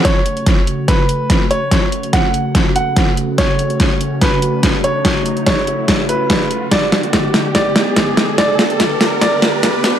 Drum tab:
HH |x-xxx-x-x-x-x-x-|x-xxx-x-x-x-x-x-|x-xxx-x-x-x-x-x-|x-xxx-x-x-x-x-x-|
SD |o---o---o---o---|o---o---o---o---|o---o---o---o---|o---o---o---o---|
BD |o---o---o---o---|o---o---o---o---|o---o---o---o---|o---o---o---o---|

HH |x-xxx-o-x-x-x-x-|x-xxx-o-x-x-x-x-|
SD |o-o-o-o-o-o-o-o-|o-o-o-o-o-o-o-o-|
BD |o---o---o---o---|o---o---o---o---|